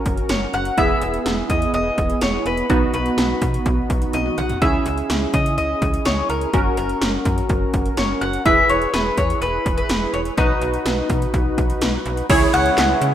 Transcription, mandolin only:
0.29 0.54 C#5 medium
0.54 0.78 F#5 loud
0.78 1.50 E5 loud
1.50 1.73 D#5 medium
1.74 2.22 D#5 medium
2.22 2.46 C#5 medium
2.46 2.93 B4 medium
2.94 3.86 B4 medium
4.14 4.38 D#5 medium
4.38 4.62 F#5 medium
4.62 5.33 E5 loud
5.34 5.56 D#5 medium
5.58 6.05 D#5 medium
6.05 6.29 C#5 medium
6.30 6.76 A#4 medium
6.77 7.69 A#4 medium
7.97 8.22 C#5 medium
8.21 8.45 F#5 loud
8.46 8.70 E5 loud
8.69 8.93 C#5 medium
8.93 9.17 B4 medium
9.18 9.41 C#5 medium
9.41 9.76 B4 medium
9.77 10.13 B4 medium
10.14 10.20 C#5 medium
10.37 12.02 D#5 medium
12.54 13.14 F#5 loud

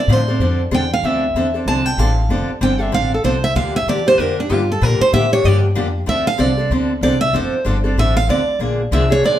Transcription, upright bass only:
0.08 0.39 A2 medium
0.39 0.70 F2 medium
0.71 1.02 E2 medium
1.03 1.33 D2 medium
1.34 1.65 E2 medium
1.66 1.96 C2 medium
1.98 2.28 A1 medium
2.29 2.47 F1 medium
2.48 muted upright bass stroke soft
2.61 2.91 G1 medium
2.92 3.23 A1 medium
3.24 3.54 C2 medium
3.55 3.86 D2 medium
3.86 4.17 E2 medium
4.18 4.49 F2 medium
4.50 4.80 G2 medium
4.82 4.99 A#2 medium
5.00 muted upright bass stroke soft
5.13 5.43 A2 medium
5.44 5.75 G2 medium
5.76 6.06 F2 medium
6.07 6.38 D2 medium
6.39 6.70 C2 loud
6.70 7.01 D2 medium
7.01 7.32 C2 loud
7.33 7.51 F1 medium
7.52 muted upright bass stroke soft
7.65 7.96 G1 medium
7.96 8.27 A1 medium
8.28 8.59 D2 medium
8.59 8.90 A#1 medium
8.91 9.22 C2 medium
9.23 9.39 D2 medium

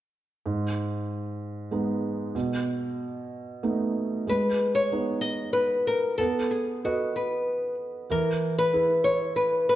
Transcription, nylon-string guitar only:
4.29 4.74 B4 medium
4.75 5.21 C#5 medium
5.21 5.53 D#5 medium
5.53 5.87 B4 medium
5.87 6.16 A#4 medium
6.18 6.51 A4 medium
6.51 6.83 G#4 medium
6.85 7.13 F#4 medium
7.16 7.74 B4 medium
8.11 8.58 A#4 medium
8.59 9.04 B4 medium
9.04 9.34 C#5 medium
9.36 9.68 B4 medium
9.69 9.76 B4 medium

